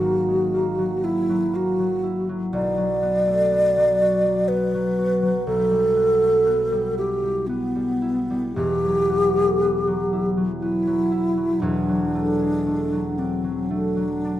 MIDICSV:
0, 0, Header, 1, 3, 480
1, 0, Start_track
1, 0, Tempo, 1015228
1, 725, Tempo, 985222
1, 1207, Time_signature, 3, 2, 24, 8
1, 3125, Tempo, 1022147
1, 3605, Tempo, 1060071
1, 4565, Tempo, 1010101
1, 5525, Tempo, 1039861
1, 6485, Tempo, 1109057
1, 6787, End_track
2, 0, Start_track
2, 0, Title_t, "Alto flute"
2, 0, Program_c, 0, 73
2, 0, Note_on_c, 0, 66, 106
2, 493, Note_on_c, 0, 64, 92
2, 500, Note_off_c, 0, 66, 0
2, 736, Note_on_c, 0, 66, 98
2, 743, Note_off_c, 0, 64, 0
2, 1085, Note_off_c, 0, 66, 0
2, 1213, Note_on_c, 0, 74, 121
2, 2162, Note_on_c, 0, 71, 108
2, 2169, Note_off_c, 0, 74, 0
2, 2636, Note_off_c, 0, 71, 0
2, 2645, Note_on_c, 0, 69, 121
2, 3355, Note_off_c, 0, 69, 0
2, 3369, Note_on_c, 0, 67, 95
2, 3600, Note_on_c, 0, 59, 99
2, 3607, Note_off_c, 0, 67, 0
2, 4088, Note_off_c, 0, 59, 0
2, 4091, Note_on_c, 0, 67, 120
2, 4899, Note_off_c, 0, 67, 0
2, 5043, Note_on_c, 0, 64, 95
2, 5516, Note_on_c, 0, 62, 116
2, 5524, Note_off_c, 0, 64, 0
2, 6246, Note_on_c, 0, 60, 89
2, 6253, Note_off_c, 0, 62, 0
2, 6482, Note_on_c, 0, 62, 98
2, 6488, Note_off_c, 0, 60, 0
2, 6787, Note_off_c, 0, 62, 0
2, 6787, End_track
3, 0, Start_track
3, 0, Title_t, "Harp"
3, 0, Program_c, 1, 46
3, 0, Note_on_c, 1, 32, 74
3, 0, Note_on_c, 1, 54, 57
3, 6, Note_on_c, 1, 58, 58
3, 134, Note_on_c, 1, 56, 46
3, 250, Note_off_c, 1, 58, 0
3, 256, Note_on_c, 1, 58, 58
3, 336, Note_off_c, 1, 56, 0
3, 366, Note_off_c, 1, 54, 0
3, 372, Note_on_c, 1, 54, 57
3, 490, Note_on_c, 1, 64, 54
3, 606, Note_off_c, 1, 54, 0
3, 612, Note_on_c, 1, 54, 57
3, 718, Note_off_c, 1, 58, 0
3, 724, Note_on_c, 1, 58, 61
3, 846, Note_off_c, 1, 54, 0
3, 852, Note_on_c, 1, 54, 54
3, 964, Note_off_c, 1, 64, 0
3, 969, Note_on_c, 1, 64, 61
3, 1088, Note_off_c, 1, 54, 0
3, 1094, Note_on_c, 1, 54, 56
3, 1209, Note_on_c, 1, 35, 72
3, 1226, Note_off_c, 1, 58, 0
3, 1228, Note_off_c, 1, 32, 0
3, 1228, Note_off_c, 1, 64, 0
3, 1325, Note_off_c, 1, 54, 0
3, 1331, Note_on_c, 1, 54, 58
3, 1452, Note_on_c, 1, 59, 61
3, 1572, Note_on_c, 1, 57, 45
3, 1688, Note_off_c, 1, 59, 0
3, 1693, Note_on_c, 1, 59, 59
3, 1772, Note_off_c, 1, 57, 0
3, 1808, Note_off_c, 1, 54, 0
3, 1814, Note_on_c, 1, 54, 56
3, 1934, Note_on_c, 1, 66, 53
3, 2045, Note_off_c, 1, 54, 0
3, 2051, Note_on_c, 1, 54, 55
3, 2165, Note_off_c, 1, 59, 0
3, 2171, Note_on_c, 1, 59, 60
3, 2284, Note_off_c, 1, 54, 0
3, 2290, Note_on_c, 1, 54, 58
3, 2401, Note_off_c, 1, 66, 0
3, 2406, Note_on_c, 1, 66, 61
3, 2516, Note_off_c, 1, 54, 0
3, 2522, Note_on_c, 1, 54, 55
3, 2637, Note_off_c, 1, 35, 0
3, 2642, Note_on_c, 1, 35, 70
3, 2658, Note_off_c, 1, 54, 0
3, 2659, Note_off_c, 1, 66, 0
3, 2761, Note_on_c, 1, 55, 60
3, 2877, Note_off_c, 1, 59, 0
3, 2883, Note_on_c, 1, 59, 62
3, 3005, Note_on_c, 1, 57, 52
3, 3120, Note_off_c, 1, 59, 0
3, 3126, Note_on_c, 1, 59, 60
3, 3211, Note_off_c, 1, 57, 0
3, 3242, Note_off_c, 1, 55, 0
3, 3248, Note_on_c, 1, 55, 57
3, 3368, Note_on_c, 1, 64, 58
3, 3482, Note_off_c, 1, 55, 0
3, 3488, Note_on_c, 1, 55, 53
3, 3604, Note_off_c, 1, 59, 0
3, 3610, Note_on_c, 1, 59, 60
3, 3723, Note_off_c, 1, 55, 0
3, 3729, Note_on_c, 1, 55, 56
3, 3844, Note_off_c, 1, 64, 0
3, 3849, Note_on_c, 1, 64, 59
3, 3972, Note_off_c, 1, 55, 0
3, 3977, Note_on_c, 1, 55, 59
3, 4093, Note_on_c, 1, 28, 67
3, 4097, Note_on_c, 1, 40, 77
3, 4116, Note_off_c, 1, 35, 0
3, 4220, Note_on_c, 1, 54, 57
3, 4331, Note_off_c, 1, 59, 0
3, 4336, Note_on_c, 1, 59, 65
3, 4456, Note_on_c, 1, 57, 50
3, 4566, Note_off_c, 1, 59, 0
3, 4572, Note_on_c, 1, 59, 60
3, 4653, Note_off_c, 1, 57, 0
3, 4688, Note_off_c, 1, 54, 0
3, 4694, Note_on_c, 1, 54, 61
3, 4809, Note_off_c, 1, 64, 0
3, 4814, Note_on_c, 1, 64, 56
3, 4925, Note_off_c, 1, 54, 0
3, 4931, Note_on_c, 1, 54, 56
3, 5044, Note_off_c, 1, 59, 0
3, 5049, Note_on_c, 1, 59, 56
3, 5163, Note_off_c, 1, 54, 0
3, 5169, Note_on_c, 1, 54, 58
3, 5281, Note_off_c, 1, 64, 0
3, 5286, Note_on_c, 1, 64, 67
3, 5401, Note_off_c, 1, 54, 0
3, 5407, Note_on_c, 1, 54, 55
3, 5515, Note_off_c, 1, 28, 0
3, 5519, Note_off_c, 1, 40, 0
3, 5521, Note_on_c, 1, 28, 69
3, 5525, Note_on_c, 1, 40, 76
3, 5545, Note_off_c, 1, 59, 0
3, 5546, Note_off_c, 1, 55, 0
3, 5642, Note_off_c, 1, 54, 0
3, 5647, Note_on_c, 1, 54, 57
3, 5769, Note_on_c, 1, 57, 66
3, 5885, Note_on_c, 1, 56, 49
3, 6000, Note_off_c, 1, 57, 0
3, 6006, Note_on_c, 1, 57, 60
3, 6089, Note_off_c, 1, 56, 0
3, 6120, Note_off_c, 1, 54, 0
3, 6126, Note_on_c, 1, 54, 58
3, 6247, Note_on_c, 1, 62, 56
3, 6359, Note_off_c, 1, 54, 0
3, 6364, Note_on_c, 1, 54, 53
3, 6481, Note_off_c, 1, 57, 0
3, 6487, Note_on_c, 1, 57, 60
3, 6594, Note_off_c, 1, 54, 0
3, 6599, Note_on_c, 1, 54, 55
3, 6716, Note_off_c, 1, 62, 0
3, 6721, Note_on_c, 1, 62, 63
3, 6787, Note_off_c, 1, 28, 0
3, 6787, Note_off_c, 1, 40, 0
3, 6787, Note_off_c, 1, 54, 0
3, 6787, Note_off_c, 1, 57, 0
3, 6787, Note_off_c, 1, 62, 0
3, 6787, Note_off_c, 1, 64, 0
3, 6787, End_track
0, 0, End_of_file